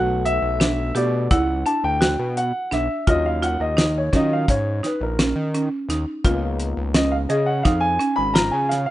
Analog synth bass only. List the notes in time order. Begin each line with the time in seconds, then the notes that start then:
Already playing: B1
0.42 B1
0.95 B2
1.31 C#2
1.84 D2
2.19 B2
2.72 B1
3.08 D#2
3.60 D#2
4.13 D#3
4.48 G#2
5.01 A#1
5.36 D#3
5.89 D#2
6.24 C#2
6.77 C#2
7.30 C#3
7.65 F2
8.18 G#1
8.53 C#3